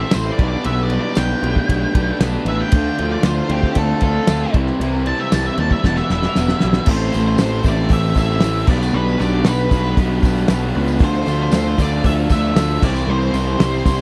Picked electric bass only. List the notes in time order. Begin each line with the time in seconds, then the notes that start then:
0.15 A1
0.39 B1
0.65 B1
1.17 B1
1.43 B1
1.69 B1
1.95 B1
2.20 B1
2.45 A1
2.73 D2
2.99 D2
3.24 D2
3.50 D2
3.77 D2
4.02 D2
4.28 D2
4.54 C2
4.80 C2
5.33 C2
5.58 D#2
5.85 E1
6.10 E1
6.37 E1
6.64 B1
6.87 A1
7.15 A1
7.39 A1
7.64 A1
7.91 A1
8.16 A1
8.42 A1
8.68 B1
8.93 B1
9.20 B1
9.45 B1
9.71 B1
9.97 B1
10.22 B1
10.50 B1
10.76 C#2
11.00 D2
11.26 D2
11.52 D2
11.79 D2
12.05 D2
12.30 D2
12.56 D2
12.83 C2
13.07 C2
13.33 C2
13.60 C2
13.85 C2